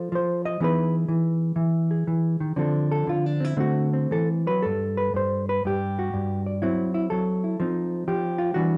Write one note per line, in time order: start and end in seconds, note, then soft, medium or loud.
0.00 0.11 F3 medium
0.00 0.59 F4 soft
0.00 0.59 A4 soft
0.00 0.13 C5 soft
0.12 0.61 F3 medium
0.12 0.45 C5 medium
0.45 0.61 D#5 loud
0.60 1.07 E3 medium
0.60 2.56 B3 medium
0.60 2.57 D#4 medium
0.60 1.90 G#4 medium
0.60 0.95 B4 medium
1.08 1.55 E3 medium
1.56 2.06 E3 medium
1.91 2.56 G#4 soft
2.07 2.40 E3 medium
2.40 2.56 D#3 medium
2.56 3.06 D3 medium
2.56 3.57 F3 medium
2.56 3.39 C4 medium
2.56 3.08 D4 medium
2.56 2.90 A4 medium
2.92 3.08 A4 medium
3.07 3.56 D3 medium
3.07 3.26 F4 medium
3.26 3.44 D4 medium
3.40 3.56 C4 medium
3.44 3.60 E4 medium
3.57 4.10 D3 medium
3.57 4.46 A3 medium
3.57 3.92 C4 medium
3.57 4.12 F#4 medium
3.93 4.62 C4 medium
4.11 4.46 E3 medium
4.11 4.28 A4 medium
4.47 4.64 F#3 medium
4.47 4.64 B4 medium
4.62 5.13 G2 medium
4.62 5.48 A4 medium
4.97 5.15 B4 medium
5.14 5.64 G2 medium
5.14 5.49 C5 medium
5.49 5.66 B4 medium
5.65 6.13 G2 medium
5.65 6.46 G4 medium
5.99 6.62 F#4 medium
6.14 6.63 G2 medium
6.46 6.62 D5 soft
6.62 7.10 F#3 medium
6.62 7.59 C4 soft
6.62 6.93 E4 medium
6.94 7.05 E4 medium
7.10 7.59 F#3 medium
7.10 8.07 A4 medium
7.44 7.59 E4 soft
7.60 8.07 F3 medium
7.60 8.55 C4 soft
7.60 8.38 D#4 soft
8.08 8.56 F3 medium
8.08 8.57 G4 medium
8.38 8.54 F4 medium
8.54 8.78 E3 medium
8.54 8.78 G3 medium
8.54 8.78 D4 soft
8.54 8.78 F#4 medium